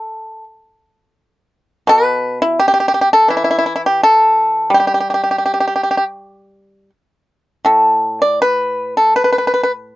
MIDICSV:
0, 0, Header, 1, 2, 480
1, 0, Start_track
1, 0, Tempo, 705882
1, 1284, Time_signature, 4, 2, 24, 8
1, 2719, Tempo, 719424
1, 4159, Tempo, 754717
1, 6577, End_track
2, 0, Start_track
2, 0, Title_t, "Pipa"
2, 0, Program_c, 0, 105
2, 0, Note_on_c, 0, 69, 62
2, 297, Note_off_c, 0, 69, 0
2, 1273, Note_on_c, 0, 47, 57
2, 1286, Note_on_c, 0, 71, 80
2, 1618, Note_off_c, 0, 71, 0
2, 1645, Note_on_c, 0, 64, 66
2, 1754, Note_off_c, 0, 64, 0
2, 1765, Note_on_c, 0, 67, 69
2, 1808, Note_off_c, 0, 67, 0
2, 1822, Note_on_c, 0, 67, 56
2, 1853, Note_off_c, 0, 67, 0
2, 1862, Note_on_c, 0, 67, 59
2, 1896, Note_off_c, 0, 67, 0
2, 1905, Note_on_c, 0, 67, 49
2, 1950, Note_off_c, 0, 67, 0
2, 1960, Note_on_c, 0, 67, 62
2, 1992, Note_off_c, 0, 67, 0
2, 2000, Note_on_c, 0, 67, 48
2, 2041, Note_off_c, 0, 67, 0
2, 2049, Note_on_c, 0, 67, 54
2, 2095, Note_off_c, 0, 67, 0
2, 2129, Note_on_c, 0, 69, 68
2, 2233, Note_on_c, 0, 52, 43
2, 2234, Note_off_c, 0, 47, 0
2, 2236, Note_off_c, 0, 69, 0
2, 2247, Note_on_c, 0, 64, 63
2, 2282, Note_off_c, 0, 64, 0
2, 2290, Note_on_c, 0, 64, 49
2, 2334, Note_off_c, 0, 64, 0
2, 2341, Note_on_c, 0, 64, 52
2, 2376, Note_off_c, 0, 64, 0
2, 2384, Note_on_c, 0, 64, 50
2, 2430, Note_off_c, 0, 64, 0
2, 2438, Note_on_c, 0, 64, 58
2, 2481, Note_off_c, 0, 64, 0
2, 2489, Note_on_c, 0, 64, 46
2, 2531, Note_off_c, 0, 64, 0
2, 2554, Note_on_c, 0, 64, 50
2, 2589, Note_off_c, 0, 64, 0
2, 2626, Note_on_c, 0, 67, 61
2, 2726, Note_off_c, 0, 67, 0
2, 2743, Note_on_c, 0, 69, 75
2, 3182, Note_off_c, 0, 69, 0
2, 3188, Note_on_c, 0, 55, 48
2, 3216, Note_on_c, 0, 67, 58
2, 3244, Note_off_c, 0, 67, 0
2, 3252, Note_on_c, 0, 67, 41
2, 3294, Note_off_c, 0, 67, 0
2, 3302, Note_on_c, 0, 67, 47
2, 3340, Note_off_c, 0, 67, 0
2, 3348, Note_on_c, 0, 67, 39
2, 3382, Note_off_c, 0, 67, 0
2, 3390, Note_on_c, 0, 67, 42
2, 3436, Note_off_c, 0, 67, 0
2, 3454, Note_on_c, 0, 67, 37
2, 3473, Note_off_c, 0, 67, 0
2, 3481, Note_on_c, 0, 67, 41
2, 3530, Note_off_c, 0, 67, 0
2, 3544, Note_on_c, 0, 67, 35
2, 3587, Note_off_c, 0, 67, 0
2, 3594, Note_on_c, 0, 67, 40
2, 3636, Note_off_c, 0, 67, 0
2, 3643, Note_on_c, 0, 67, 34
2, 3675, Note_off_c, 0, 52, 0
2, 3683, Note_off_c, 0, 67, 0
2, 3691, Note_on_c, 0, 67, 40
2, 3733, Note_off_c, 0, 67, 0
2, 3746, Note_on_c, 0, 67, 38
2, 3782, Note_off_c, 0, 67, 0
2, 3790, Note_on_c, 0, 67, 42
2, 3829, Note_off_c, 0, 67, 0
2, 3837, Note_on_c, 0, 67, 35
2, 3879, Note_off_c, 0, 67, 0
2, 3892, Note_on_c, 0, 67, 43
2, 3931, Note_off_c, 0, 67, 0
2, 3943, Note_on_c, 0, 67, 36
2, 3982, Note_off_c, 0, 67, 0
2, 3993, Note_on_c, 0, 67, 41
2, 4029, Note_off_c, 0, 67, 0
2, 4037, Note_on_c, 0, 67, 38
2, 4077, Note_off_c, 0, 67, 0
2, 4629, Note_off_c, 0, 55, 0
2, 5106, Note_on_c, 0, 45, 44
2, 5113, Note_on_c, 0, 69, 61
2, 5454, Note_off_c, 0, 69, 0
2, 5469, Note_on_c, 0, 74, 64
2, 5588, Note_off_c, 0, 74, 0
2, 5597, Note_on_c, 0, 71, 65
2, 5937, Note_off_c, 0, 71, 0
2, 5949, Note_on_c, 0, 69, 53
2, 6066, Note_off_c, 0, 69, 0
2, 6069, Note_on_c, 0, 71, 56
2, 6114, Note_off_c, 0, 71, 0
2, 6121, Note_on_c, 0, 71, 42
2, 6166, Note_off_c, 0, 71, 0
2, 6174, Note_on_c, 0, 71, 51
2, 6203, Note_off_c, 0, 71, 0
2, 6210, Note_on_c, 0, 71, 41
2, 6260, Note_off_c, 0, 71, 0
2, 6268, Note_on_c, 0, 71, 51
2, 6301, Note_off_c, 0, 71, 0
2, 6309, Note_on_c, 0, 71, 40
2, 6362, Note_off_c, 0, 71, 0
2, 6371, Note_on_c, 0, 71, 47
2, 6418, Note_off_c, 0, 71, 0
2, 6554, Note_off_c, 0, 45, 0
2, 6577, End_track
0, 0, End_of_file